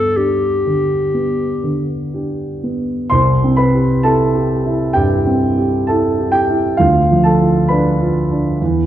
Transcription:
Already playing: G2 B3 A4
0.16 D4 G4
0.66 D3
1.14 B3
1.63 D3
2.14 D4 G4
2.63 B3
3.10 C2 C5 C6
3.44 C4
3.57 B4 B5
3.75 G4
4.03 E4 A4 A5
4.35 G4
4.66 E4
4.93 G2 G4 G5
5.27 C4
5.58 G4
5.87 E4 A4 A5
6.19 G4
6.32 G4 G5
6.49 E4
6.77 D2 F4 F5
7.11 F3
7.24 A4 A5
7.41 F4
7.68 D4 B4 B5
8.02 F4
8.31 D4
8.61 E2

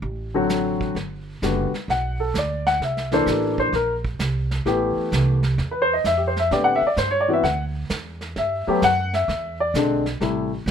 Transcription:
0.02 A1, brush sweep
0.34 D3 F#3 C4 F#4
0.49 snare, hi-hat pedal
0.81 kick
0.95 G1, brush sweep, snare
1.42 F#1 D3 G3 B3 F#4, snare, hi-hat pedal
1.72 muted upright bass stroke, snare
1.88 B1 F#5, brush sweep, snare
2.20 A4
2.34 D2, snare, hi-hat pedal
2.38 D5
2.66 F#5, snare
2.80 C2 E5, brush sweep, snare
2.97 snare
3.12 E3 A#3 D4 A4 C5, snare
3.26 A1, snare, hi-hat pedal
3.31 A4
3.58 C5, kick
3.72 A#1 A#4, brush sweep, snare
4.05 kick
4.19 C2, snare, hi-hat pedal
4.51 snare
4.66 A1 E3 A3 B3 G4, brush sweep, snare
4.97 muted upright bass stroke
5.12 C2, snare, hi-hat pedal
5.43 snare
5.58 E2, brush sweep, snare
5.71 B4
5.82 C5
5.93 D#5
6.04 F2 E5, snare, hi-hat pedal
6.17 G4
6.27 C5
6.36 E5, snare
6.51 A2 D3 B3 C4 G4 D5, brush sweep, snare
6.64 F#5
6.76 E5
6.82 muted upright bass stroke
6.87 D5
6.97 G2 C5, snare, hi-hat pedal
7.11 C#5
7.20 D5
7.28 E3 B3 C4 F#4
7.33 E5
7.43 D2 F#5, brush sweep, snare
7.90 E2, snare, hi-hat pedal
8.21 snare
8.36 G2 E5, brush sweep, snare
8.67 F#3 A3 B3 G4, muted upright bass stroke
8.82 F#2 F#5, snare, hi-hat pedal
9.13 E5, snare
9.28 E2, brush sweep, snare
9.60 D5
9.74 B1 D3 G#3 C4 D4, snare, hi-hat pedal
10.06 snare
10.21 A1 C3 G3 A3 E4, brush sweep, snare
10.66 C2, snare, hi-hat pedal

